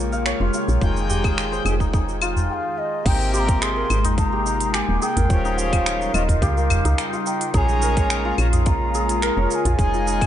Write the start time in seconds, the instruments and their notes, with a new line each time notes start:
Already playing: fm bass A#1, ambient pad C#3 G#3 A#3 F4, santur D#4 F4 G#4 A#4 C#5 F5, synth texture G4 G5
0.12 santur F5, cabasa
0.26 santur C#5, finger snap, cabasa
0.40 fm bass F1, santur F4
0.54 santur F4, cabasa
0.68 fm bass A#1, cabasa
0.79 fm bass F1, harmonium D#3 G#3, ambient pad D#3 G#3 G5, santur F4, kick, cabasa
0.83 harmonium G5
0.97 cabasa
1.10 santur G4, udu, cabasa
1.24 santur G#4, kick, cabasa, claves
1.38 finger snap, cabasa
1.52 santur C5, cabasa
1.65 fm bass F1, harmonium D#3 G#3 G4, santur G#4, cabasa, claves
1.80 santur D#4, kick, cabasa
1.94 santur D#4, kick, cabasa
2.09 cabasa
2.22 santur F4, cabasa, claves
2.36 udu, cabasa
2.50 bansuri F5 G5
2.78 bansuri D#5
3.04 fm bass G#1, harmonium C3 A#3 G4, ambient pad C3 G#3 A#3 G5, santur D#4, synth texture F4 F5, bansuri G5, kick, open hi-hat, crash, cabasa
3.21 cabasa
3.34 santur G4, bansuri C6, cabasa
3.39 bansuri A#5
3.48 kick, open hi-hat, cabasa
3.62 santur G#4, bansuri C6, finger snap, open hi-hat, cabasa
3.76 santur A#4
3.89 fm bass G#1, harmonium C3 A#3 G4, cabasa, claves
4.04 santur D#4, open hi-hat, udu, cabasa
4.18 bansuri A#5, kick, open hi-hat, cabasa
4.33 santur G4
4.46 santur D#4, cabasa
4.60 open hi-hat, cabasa
4.74 santur G4, bansuri G#5, finger snap, open hi-hat, cabasa
4.89 fm bass D#1
5.02 santur G#4, bansuri G5, cabasa
5.17 fm bass G#1, santur A#4, open hi-hat, udu, cabasa
5.28 fm bass D#1, ambient pad C#3 G3 D#4 F4, harmonium F3 C#4 G4, kick, open hi-hat, cabasa
5.45 santur D#4, cabasa
5.58 bansuri F5, cabasa
5.73 santur F4, kick, open hi-hat, cabasa, claves
5.86 santur D#4, finger snap, open hi-hat, cabasa
6.01 cabasa
6.13 fm bass D#1, harmonium F3 C#4 G4, santur F4, bansuri D#5, cabasa, claves
6.29 kick, open hi-hat, udu, cabasa
6.42 fm bass C#2, santur G4, bansuri F5, kick, open hi-hat, cabasa
6.57 santur A#4, cabasa
6.70 fm bass D#1, udu, cabasa, claves
6.85 fm bass C#2, santur D#4, open hi-hat, cabasa
6.98 finger snap, open hi-hat, cabasa
7.13 santur F4, cabasa
7.26 santur D#4, bansuri G5, cabasa
7.41 open hi-hat, cabasa
7.52 fm bass A#1, harmonium G#3 C#4 A#4, ambient pad G#3 A#3 F4, santur G#4, bansuri A#5, kick, open hi-hat, cabasa
7.58 bansuri G#5
7.69 cabasa
7.82 santur A#4, cabasa
7.97 santur C#5, kick, open hi-hat, cabasa
8.10 finger snap, open hi-hat, cabasa
8.25 santur F4
8.38 fm bass A#1, harmonium G#3 C#4 A#4, cabasa, claves
8.53 santur G#4, open hi-hat, udu, cabasa
8.66 santur F4, bansuri A#5, kick, open hi-hat, cabasa
8.95 santur G#4, cabasa
9.09 open hi-hat, cabasa
9.22 santur A#4, finger snap, open hi-hat, cabasa
9.37 fm bass F1, santur C#5
9.51 bansuri A#5, cabasa
9.55 bansuri G#5
9.65 fm bass A#1, santur F4, open hi-hat, udu, cabasa
9.77 fm bass F1, ambient pad D#3, harmonium G#3 D#4 G#4, kick, open hi-hat, cabasa
9.94 santur F4, cabasa
10.07 santur D#4, cabasa
10.21 kick, open hi-hat, cabasa, claves